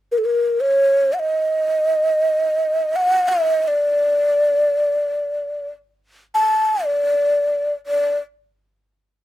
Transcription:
0.12 0.20 A#4 medium
0.18 0.26 A4 soft
0.25 0.62 A#4 medium
0.61 1.15 C#5 medium
1.13 1.21 F#5 soft
1.20 2.97 D#5 medium
2.96 3.30 F#5 medium
3.28 3.69 D#5 medium
3.68 5.69 D5 medium
6.34 6.86 A5 medium
6.85 7.73 D5 medium
7.87 8.17 D5 medium

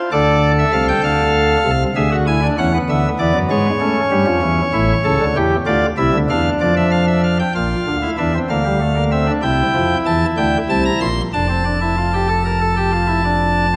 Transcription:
0.12 0.64 D2 medium
0.12 0.64 D3 loud
0.12 1.71 A4 medium
0.12 0.51 D5 medium
0.59 0.71 E5 medium
0.73 0.92 C2 medium
0.73 0.92 C3 medium
0.73 0.86 F5 medium
0.88 1.01 G5 medium
1.04 1.57 D2 medium
1.04 1.57 D3 medium
1.04 1.83 F5 medium
1.65 1.84 C2 medium
1.65 1.84 C3 medium
1.96 2.49 D2 medium
1.96 2.49 D3 medium
1.96 2.09 G#4 medium
1.96 2.15 E5 medium
2.12 2.25 F#4 medium
2.27 2.40 E4 medium
2.27 2.46 G#5 medium
2.43 2.56 D4 medium
2.58 2.77 E2 medium
2.58 2.77 E3 medium
2.58 2.71 C#4 medium
2.58 2.77 F#5 medium
2.74 3.66 B3 medium
2.89 3.08 D2 medium
2.89 3.08 D3 medium
2.89 3.08 E5 medium
3.19 3.33 E2 medium
3.19 3.32 E3 medium
3.19 3.38 D5 medium
3.34 3.48 F#2 medium
3.34 3.48 F#3 medium
3.50 3.69 G#2 medium
3.50 3.69 G#3 medium
3.50 5.37 C#5 medium
3.81 4.00 A3 loud
3.81 4.61 C#4 medium
4.11 4.25 G2 medium
4.11 4.25 G3 medium
4.27 4.40 F2 medium
4.27 4.40 F3 medium
4.42 4.62 E2 medium
4.42 4.62 E3 medium
4.73 4.93 A1 medium
4.73 4.93 A2 medium
4.73 4.93 E4 medium
5.04 5.18 C#2 medium
5.04 5.18 C#3 medium
5.04 5.24 A4 medium
5.21 5.34 D2 medium
5.21 5.34 D3 medium
5.36 5.55 E2 medium
5.36 5.55 E3 medium
5.36 5.55 G4 medium
5.66 5.86 D2 medium
5.66 5.86 D3 medium
5.66 5.86 F4 medium
5.66 5.86 D5 medium
5.97 6.11 C2 medium
5.97 6.11 C3 medium
5.97 6.17 E4 medium
5.97 6.17 E5 medium
6.13 6.27 D2 medium
6.13 6.27 D3 medium
6.29 6.49 E2 medium
6.29 6.49 E3 medium
6.29 7.38 D4 medium
6.29 6.49 F5 medium
6.61 7.42 F2 medium
6.61 7.42 F3 medium
6.61 6.74 D5 medium
6.77 6.90 E5 medium
6.91 7.05 F5 medium
7.08 7.21 E5 medium
7.24 7.37 F5 medium
7.39 7.53 G5 medium
7.55 7.75 A#1 medium
7.55 7.75 A#2 medium
7.55 7.96 F4 medium
7.55 8.10 F5 medium
7.87 8.07 D2 medium
7.87 8.07 D3 medium
8.02 8.16 E4 medium
8.18 8.38 E2 medium
8.18 8.38 E3 medium
8.18 8.32 D4 medium
8.18 8.38 E5 medium
8.35 8.48 C4 medium
8.50 9.30 D2 medium
8.50 9.30 D3 medium
8.50 8.63 A#3 medium
8.50 9.03 F5 medium
8.65 8.79 G3 medium
8.81 8.94 A3 medium
8.96 9.10 A#3 medium
9.12 9.25 C4 medium
9.12 9.31 E5 medium
9.27 9.41 D4 medium
9.43 9.63 C2 medium
9.43 9.62 C3 medium
9.43 11.06 E4 medium
9.43 9.97 G5 medium
9.75 9.94 F2 medium
9.75 9.94 F3 medium
10.06 10.25 E2 medium
10.06 10.25 E3 medium
10.06 10.25 A5 medium
10.37 10.57 D2 medium
10.37 10.57 D3 medium
10.37 10.57 G5 medium
10.69 10.89 C2 medium
10.69 10.89 C3 medium
10.69 10.83 A5 medium
10.85 10.99 A#5 medium
11.01 11.21 A#1 medium
11.01 11.21 A#2 medium
11.01 11.21 C6 medium
11.33 13.76 F1 medium
11.33 13.76 F2 medium
11.33 11.47 D4 medium
11.33 13.76 A5 medium
11.49 11.63 C4 medium
11.65 11.79 D4 medium
11.81 11.95 E4 medium
11.98 12.11 F4 medium
12.14 12.27 G4 medium
12.29 12.43 A4 medium
12.45 12.59 A#4 medium
12.61 12.75 A4 medium
12.77 12.91 G4 soft
12.92 13.06 F4 medium
13.08 13.22 E4 medium
13.24 13.66 D4 medium

